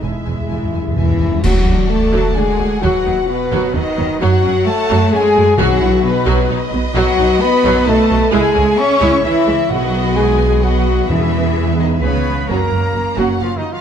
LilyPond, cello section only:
\new Staff \with { instrumentName = "Cello section" } { \clef bass \time 3/4 \key b \mixolydian \tempo 4 = 130 << { e,8 e,8 r4 e4 | fis4 a4 gis4 | fis4 b,4 dis4 | fis4 a4 gis4 |
fis4 b,4 r4 | fis4 b4 a4 | gis4 cis'4 e4 | fis4 gis4 fis4 |
e4. dis8 <cis b>4 | \key fis \major ais4. fis8 \tuplet 3/2 { eis8 dis8 eis8 } | } \\ { r4 gis,8 fis,8 e,8 dis,8 | r2. | r2. | r2. |
r2. | r2. | r2. | r2. |
r2. | r2. | } >> }